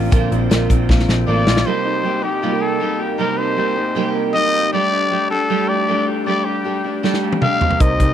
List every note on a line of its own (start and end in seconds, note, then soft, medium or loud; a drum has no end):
0.00 0.11 A#2 medium
0.00 0.55 F3 medium
0.00 0.11 A#3 soft
0.00 0.89 A#3 medium
0.00 0.11 C4 soft
0.00 0.31 C4 medium
0.00 1.42 D4 medium
0.00 0.12 F4 medium
0.00 1.43 A#4 medium
0.00 1.43 C5 medium
0.11 0.28 A#1 loud
0.11 0.31 A#2 medium
0.11 0.31 D3 medium
0.11 0.31 A#3 medium
0.11 0.31 C4 medium
0.11 0.29 F4 medium
0.11 kick loud
0.11 closed hi-hat loud
0.30 0.47 A#1 medium
0.30 0.50 A#3 medium
0.30 0.50 C4 medium
0.30 0.50 F4 medium
0.30 closed hi-hat medium
0.50 0.67 A#1 medium
0.50 0.69 D3 medium
0.50 0.70 A#3 medium
0.50 0.70 C4 medium
0.50 0.68 F4 medium
0.50 snare loud
0.50 closed hi-hat medium
0.69 0.86 A#1 medium
0.69 1.27 A#3 soft
0.69 1.28 C4 medium
0.69 1.27 F4 medium
0.69 kick medium
0.69 closed hi-hat medium
0.89 1.05 A#1 loud
0.89 1.27 A#3 medium
0.89 kick medium
0.89 snare medium
0.99 snare medium
1.08 1.24 A#1 loud
1.08 1.85 C4 medium
1.08 snare medium
1.27 1.44 A1 medium
1.27 1.46 D3 medium
1.27 1.47 A#3 medium
1.27 1.46 C4 medium
1.27 1.44 F4 medium
1.27 1.68 D5 medium
1.45 1.63 A#1 medium
1.45 1.65 A#3 soft
1.45 1.66 C4 soft
1.45 1.65 F4 medium
1.45 snare loud
1.57 snare medium
1.65 2.04 C3 medium
1.65 2.03 G3 medium
1.65 2.03 A#3 medium
1.65 2.04 D#4 medium
1.65 2.06 G4 medium
1.65 2.25 C5 medium
1.85 2.22 D#4 medium
2.03 2.23 G3 soft
2.03 2.23 A#3 medium
2.03 2.23 D#4 medium
2.03 2.21 G4 medium
2.22 2.42 A#3 soft
2.22 2.43 D#4 soft
2.22 2.42 G4 soft
2.22 2.63 G4 medium
2.42 2.81 C3 medium
2.42 2.79 G3 medium
2.42 2.80 A#3 medium
2.42 2.81 D#4 medium
2.42 2.52 F4 medium
2.42 2.82 G4 medium
2.52 2.99 G4 medium
2.62 4.14 A#3 medium
2.62 3.00 A4 medium
2.80 3.19 G3 medium
2.80 3.18 A#3 medium
2.80 3.19 D#4 medium
2.80 3.20 G4 medium
3.00 3.57 G4 medium
3.18 3.57 C3 medium
3.18 3.56 G3 medium
3.18 3.56 A#3 medium
3.18 3.57 D#4 medium
3.18 3.59 G4 medium
3.18 3.40 A#4 medium
3.38 3.76 D#4 medium
3.38 4.15 C5 medium
3.56 3.76 G3 medium
3.56 3.77 A#3 medium
3.56 3.76 D#4 medium
3.56 3.74 G4 medium
3.75 3.95 A#3 soft
3.75 3.96 D#4 soft
3.75 3.96 G4 soft
3.95 4.34 C3 medium
3.95 4.33 G3 medium
3.95 4.33 A#3 medium
3.95 4.34 D#4 medium
3.95 4.36 G4 medium
4.15 4.77 A#3 medium
4.33 4.72 G3 medium
4.33 4.73 A#3 medium
4.33 4.74 D#4 medium
4.33 4.74 G4 medium
4.33 4.70 D#5 loud
4.54 5.11 G4 medium
4.73 5.10 G3 medium
4.73 5.10 A3 medium
4.73 5.11 D4 medium
4.73 5.13 G4 medium
4.73 5.27 D5 loud
4.92 5.29 D4 medium
5.11 5.30 G3 medium
5.11 5.31 A3 medium
5.11 5.30 D4 medium
5.11 5.28 G4 medium
5.30 5.49 A3 soft
5.30 5.50 D4 soft
5.30 5.49 G4 soft
5.30 5.70 A4 medium
5.50 5.87 G3 medium
5.50 5.88 A3 medium
5.50 5.89 D4 medium
5.50 5.91 G4 medium
5.69 7.21 A3 medium
5.69 6.07 D5 loud
5.88 6.26 G3 medium
5.88 6.26 A3 medium
5.88 6.27 D4 medium
5.88 6.28 G4 medium
6.08 6.65 G4 medium
6.26 6.64 G3 medium
6.26 6.64 A3 medium
6.26 6.65 D4 medium
6.26 6.67 G4 medium
6.26 6.47 D5 medium
6.45 6.83 D4 medium
6.45 6.95 G4 medium
6.64 6.84 G3 medium
6.64 6.85 A3 medium
6.64 6.85 D4 medium
6.64 6.83 G4 medium
6.84 7.03 A3 soft
6.84 7.04 D4 soft
6.84 7.03 G4 soft
7.03 7.41 G3 medium
7.03 7.42 A3 medium
7.03 7.43 D4 medium
7.03 7.44 G4 medium
7.03 snare medium
7.13 snare medium
7.23 7.65 A3 medium
7.32 high tom medium
7.41 7.61 G3 medium
7.41 7.62 A3 medium
7.41 7.61 D4 medium
7.41 7.60 G4 medium
7.41 7.83 F5 loud
7.41 mid tom medium
7.61 8.14 C3 soft
7.61 8.14 G3 soft
7.61 8.14 A#3 medium
7.61 8.14 D#4 medium
7.61 8.14 G4 medium
7.61 floor tom medium
7.71 floor tom medium
7.80 7.96 C2 medium
7.80 8.14 C3 medium
7.80 8.14 D#4 medium
7.80 8.14 A#4 medium
7.80 8.14 C5 medium
7.80 8.14 D#5 loud
7.80 kick loud
7.80 closed hi-hat medium
8.00 8.14 C2 medium
8.00 8.14 D#4 medium
8.00 kick medium
8.00 closed hi-hat medium